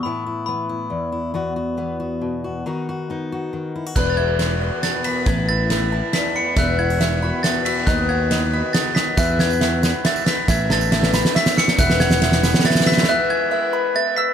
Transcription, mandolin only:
X:1
M:3/4
L:1/8
Q:1/4=138
K:E
V:1 name="Mandolin"
z6 | z6 | z6 | B e B f B b |
B e B a B b | e f e b e e' | d f d b d d' | e f e b e e' |
e a e b e e' | e f e b e e' | e g e b e e' |]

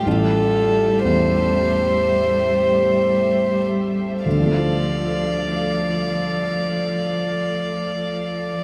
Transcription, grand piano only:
X:1
M:4/4
L:1/8
Q:1/4=55
K:Dm
V:1 name="Grand piano" clef=bass
A,,,2 E,,6 | [D,,D,F,A,FA]8 |]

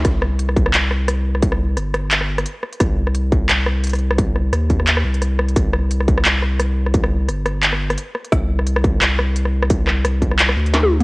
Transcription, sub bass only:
X:1
M:4/4
L:1/8
Q:"Swing 16ths" 1/4=174
K:Cm
V:1 name="Sub bass" clef=bass
C,,4 C,,4- | C,,2 G,,,4 z2 | C,,4 C,,4- | C,,2 E,,3 C,,3 |
C,,4 C,,4- | C,,2 G,,,4 z2 | C,,4 C,,4- | C,,2 C,,3 D,,3 |]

